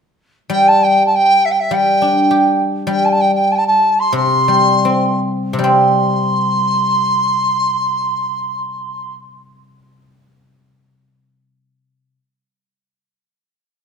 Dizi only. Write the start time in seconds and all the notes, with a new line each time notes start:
0.51 G5
0.68 A5
0.83 G5
1.06 A5
1.14 G5
1.45 E5
1.51 G5
1.60 E5
1.74 G5
2.91 G5
3.05 G5 A5
3.12 A5
3.20 G5
3.34 G5
3.51 G5 A5
3.58 A5
3.67 A5
3.99 C6
4.16 C6
5.66 C6